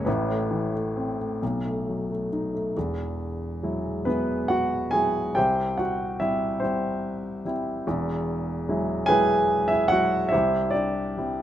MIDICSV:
0, 0, Header, 1, 2, 480
1, 0, Start_track
1, 0, Tempo, 895522
1, 38, Time_signature, 6, 3, 24, 8
1, 1478, Tempo, 869565
1, 2918, Tempo, 829876
1, 6420, End_track
2, 0, Start_track
2, 0, Title_t, "Grand piano"
2, 0, Program_c, 0, 0
2, 0, Control_c, 0, 64, 127
2, 26, Note_on_c, 0, 71, 61
2, 32, Note_on_c, 0, 64, 54
2, 33, Note_on_c, 0, 33, 65
2, 35, Note_on_c, 0, 45, 68
2, 43, Control_c, 0, 64, 0
2, 152, Control_c, 0, 64, 127
2, 159, Note_on_c, 0, 57, 48
2, 271, Note_on_c, 0, 52, 45
2, 385, Note_off_c, 0, 57, 0
2, 393, Note_on_c, 0, 57, 45
2, 515, Note_on_c, 0, 60, 51
2, 631, Note_off_c, 0, 57, 0
2, 639, Note_on_c, 0, 57, 40
2, 736, Note_off_c, 0, 33, 0
2, 737, Note_off_c, 0, 45, 0
2, 743, Note_off_c, 0, 52, 0
2, 752, Note_off_c, 0, 60, 0
2, 757, Note_off_c, 0, 57, 0
2, 762, Note_on_c, 0, 35, 49
2, 763, Note_on_c, 0, 47, 54
2, 768, Control_c, 0, 64, 0
2, 848, Control_c, 0, 64, 127
2, 887, Note_on_c, 0, 57, 44
2, 1010, Note_on_c, 0, 54, 39
2, 1120, Note_off_c, 0, 57, 0
2, 1128, Note_on_c, 0, 57, 41
2, 1215, Note_off_c, 0, 71, 0
2, 1219, Note_off_c, 0, 64, 0
2, 1246, Note_on_c, 0, 63, 39
2, 1357, Note_off_c, 0, 57, 0
2, 1365, Note_on_c, 0, 57, 40
2, 1457, Note_off_c, 0, 35, 0
2, 1458, Note_off_c, 0, 47, 0
2, 1467, Note_off_c, 0, 54, 0
2, 1472, Note_off_c, 0, 63, 0
2, 1476, Note_off_c, 0, 57, 0
2, 1484, Note_on_c, 0, 40, 49
2, 1485, Note_on_c, 0, 28, 45
2, 1486, Control_c, 0, 64, 0
2, 1567, Control_c, 0, 64, 127
2, 1961, Note_on_c, 0, 54, 39
2, 1961, Note_on_c, 0, 56, 35
2, 1964, Note_on_c, 0, 64, 42
2, 2193, Note_on_c, 0, 71, 68
2, 2196, Note_off_c, 0, 54, 0
2, 2197, Note_off_c, 0, 56, 0
2, 2198, Note_on_c, 0, 59, 58
2, 2202, Note_off_c, 0, 64, 0
2, 2204, Note_on_c, 0, 54, 39
2, 2206, Note_on_c, 0, 56, 33
2, 2210, Note_on_c, 0, 64, 43
2, 2424, Note_off_c, 0, 59, 0
2, 2431, Note_on_c, 0, 78, 78
2, 2440, Note_on_c, 0, 66, 66
2, 2446, Note_off_c, 0, 71, 0
2, 2663, Note_off_c, 0, 66, 0
2, 2665, Note_on_c, 0, 80, 87
2, 2668, Note_off_c, 0, 54, 0
2, 2669, Note_off_c, 0, 56, 0
2, 2671, Note_off_c, 0, 64, 0
2, 2676, Note_on_c, 0, 68, 60
2, 2682, Note_on_c, 0, 54, 37
2, 2683, Note_off_c, 0, 78, 0
2, 2686, Note_on_c, 0, 56, 36
2, 2689, Note_on_c, 0, 64, 45
2, 2898, Note_off_c, 0, 40, 0
2, 2898, Note_off_c, 0, 68, 0
2, 2899, Note_off_c, 0, 28, 0
2, 2908, Note_on_c, 0, 79, 84
2, 2910, Note_off_c, 0, 54, 0
2, 2913, Note_off_c, 0, 56, 0
2, 2914, Note_off_c, 0, 64, 0
2, 2915, Note_on_c, 0, 67, 59
2, 2916, Note_off_c, 0, 80, 0
2, 2916, Note_on_c, 0, 76, 57
2, 2917, Note_on_c, 0, 72, 58
2, 2925, Control_c, 0, 64, 0
2, 2926, Note_on_c, 0, 36, 58
2, 3039, Control_c, 0, 64, 127
2, 3143, Note_off_c, 0, 67, 0
2, 3144, Note_off_c, 0, 76, 0
2, 3145, Note_off_c, 0, 72, 0
2, 3155, Note_on_c, 0, 78, 65
2, 3164, Note_on_c, 0, 66, 49
2, 3165, Note_off_c, 0, 79, 0
2, 3389, Note_off_c, 0, 66, 0
2, 3399, Note_on_c, 0, 76, 78
2, 3405, Note_on_c, 0, 55, 47
2, 3407, Note_on_c, 0, 64, 61
2, 3408, Note_off_c, 0, 78, 0
2, 3408, Note_on_c, 0, 60, 41
2, 3625, Note_off_c, 0, 76, 0
2, 3630, Note_off_c, 0, 64, 0
2, 3631, Note_on_c, 0, 72, 65
2, 3636, Note_off_c, 0, 60, 0
2, 3640, Note_on_c, 0, 64, 47
2, 3642, Note_off_c, 0, 55, 0
2, 3645, Note_on_c, 0, 60, 49
2, 3650, Note_on_c, 0, 55, 46
2, 4110, Note_off_c, 0, 55, 0
2, 4120, Note_off_c, 0, 60, 0
2, 4124, Note_off_c, 0, 64, 0
2, 4125, Note_on_c, 0, 55, 48
2, 4128, Note_on_c, 0, 60, 41
2, 4132, Note_on_c, 0, 64, 50
2, 4150, Note_off_c, 0, 72, 0
2, 4339, Note_off_c, 0, 36, 0
2, 4353, Note_off_c, 0, 55, 0
2, 4354, Note_off_c, 0, 60, 0
2, 4357, Note_off_c, 0, 64, 0
2, 4365, Control_c, 0, 64, 0
2, 4367, Note_on_c, 0, 28, 64
2, 4368, Note_on_c, 0, 40, 65
2, 4481, Control_c, 0, 64, 127
2, 4839, Note_on_c, 0, 54, 52
2, 4840, Note_on_c, 0, 56, 50
2, 4844, Note_on_c, 0, 64, 54
2, 5055, Note_on_c, 0, 80, 108
2, 5067, Note_on_c, 0, 71, 82
2, 5068, Note_off_c, 0, 54, 0
2, 5068, Note_off_c, 0, 56, 0
2, 5069, Note_on_c, 0, 68, 73
2, 5070, Note_off_c, 0, 64, 0
2, 5076, Note_on_c, 0, 54, 52
2, 5077, Note_on_c, 0, 56, 52
2, 5079, Note_on_c, 0, 64, 63
2, 5396, Note_off_c, 0, 80, 0
2, 5403, Note_off_c, 0, 68, 0
2, 5403, Note_off_c, 0, 71, 0
2, 5412, Note_on_c, 0, 76, 88
2, 5421, Note_off_c, 0, 64, 0
2, 5430, Note_on_c, 0, 64, 62
2, 5530, Note_on_c, 0, 78, 96
2, 5536, Note_off_c, 0, 54, 0
2, 5536, Note_off_c, 0, 56, 0
2, 5540, Note_off_c, 0, 64, 0
2, 5543, Note_off_c, 0, 76, 0
2, 5550, Note_on_c, 0, 54, 48
2, 5552, Note_on_c, 0, 66, 66
2, 5553, Note_on_c, 0, 56, 46
2, 5556, Note_on_c, 0, 64, 45
2, 5763, Note_on_c, 0, 76, 80
2, 5769, Note_off_c, 0, 28, 0
2, 5769, Note_off_c, 0, 40, 0
2, 5772, Note_off_c, 0, 64, 0
2, 5774, Note_off_c, 0, 66, 0
2, 5781, Note_on_c, 0, 64, 60
2, 5782, Note_off_c, 0, 54, 0
2, 5782, Note_on_c, 0, 72, 63
2, 5784, Note_off_c, 0, 56, 0
2, 5785, Note_on_c, 0, 67, 63
2, 5787, Note_off_c, 0, 78, 0
2, 5794, Control_c, 0, 64, 0
2, 5797, Note_on_c, 0, 36, 64
2, 5898, Control_c, 0, 64, 127
2, 6000, Note_off_c, 0, 76, 0
2, 6006, Note_on_c, 0, 74, 78
2, 6009, Note_off_c, 0, 64, 0
2, 6010, Note_off_c, 0, 72, 0
2, 6011, Note_off_c, 0, 67, 0
2, 6028, Note_on_c, 0, 67, 50
2, 6029, Note_on_c, 0, 62, 50
2, 6277, Note_on_c, 0, 55, 41
2, 6281, Note_on_c, 0, 60, 36
2, 6283, Note_on_c, 0, 64, 48
2, 6420, Note_off_c, 0, 36, 0
2, 6420, Note_off_c, 0, 55, 0
2, 6420, Note_off_c, 0, 60, 0
2, 6420, Note_off_c, 0, 62, 0
2, 6420, Note_off_c, 0, 64, 0
2, 6420, Note_off_c, 0, 67, 0
2, 6420, Note_off_c, 0, 74, 0
2, 6420, End_track
0, 0, End_of_file